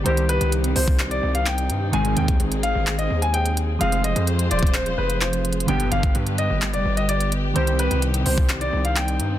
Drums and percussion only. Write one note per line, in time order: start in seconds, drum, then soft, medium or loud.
0.06 closed hi-hat medium
0.17 closed hi-hat medium
0.29 closed hi-hat medium
0.41 closed hi-hat medium
0.52 closed hi-hat medium
0.64 closed hi-hat medium
0.76 open hi-hat medium
0.88 kick medium
0.99 clap loud
0.99 closed hi-hat medium
1.11 closed hi-hat medium
1.35 closed hi-hat medium
1.46 clap loud
1.46 closed hi-hat medium
1.58 closed hi-hat medium
1.70 closed hi-hat medium
1.93 closed hi-hat medium
2.05 closed hi-hat medium
2.17 closed hi-hat medium
2.28 kick medium
2.28 closed hi-hat medium
2.40 closed hi-hat medium
2.52 closed hi-hat medium
2.63 closed hi-hat medium
2.87 clap loud
2.87 closed hi-hat medium
2.99 closed hi-hat medium
3.22 closed hi-hat medium
3.34 closed hi-hat medium
3.46 closed hi-hat medium
3.57 closed hi-hat medium
3.81 closed hi-hat medium
3.92 closed hi-hat medium
4.04 closed hi-hat medium
4.16 closed hi-hat medium
4.27 closed hi-hat medium
4.39 closed hi-hat medium
4.51 closed hi-hat medium
4.51 open hi-hat medium
4.59 kick medium
4.59 closed hi-hat medium
4.67 closed hi-hat medium
4.74 clap loud
4.74 closed hi-hat medium
4.86 closed hi-hat medium
5.10 closed hi-hat medium
5.21 clap loud
5.21 closed hi-hat medium
5.33 closed hi-hat medium
5.45 closed hi-hat medium
5.53 closed hi-hat medium
5.60 closed hi-hat medium
5.68 closed hi-hat medium
5.80 closed hi-hat medium
5.92 closed hi-hat medium
6.03 kick medium
6.03 closed hi-hat medium
6.15 closed hi-hat medium
6.27 closed hi-hat medium
6.38 closed hi-hat medium
6.62 clap loud
6.62 closed hi-hat medium
6.74 closed hi-hat medium
6.97 closed hi-hat medium
7.09 closed hi-hat medium
7.20 closed hi-hat medium
7.32 closed hi-hat medium
7.56 closed hi-hat medium
7.67 closed hi-hat medium
7.79 closed hi-hat medium
7.91 closed hi-hat medium
8.02 closed hi-hat medium
8.14 closed hi-hat medium
8.26 open hi-hat medium
8.38 kick medium
8.49 clap loud
8.49 closed hi-hat medium
8.61 closed hi-hat medium
8.85 closed hi-hat medium
8.96 clap loud
8.96 closed hi-hat medium
9.08 closed hi-hat medium
9.20 closed hi-hat medium